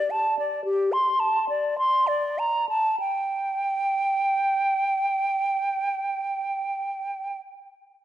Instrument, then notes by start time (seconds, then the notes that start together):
flute
Already playing: D5
0.10 A5
0.39 D5
0.65 G4
0.92 C6
1.20 A5
1.49 D5
1.78 C6
2.07 D5
2.39 A#5
2.69 A5
3.00 G5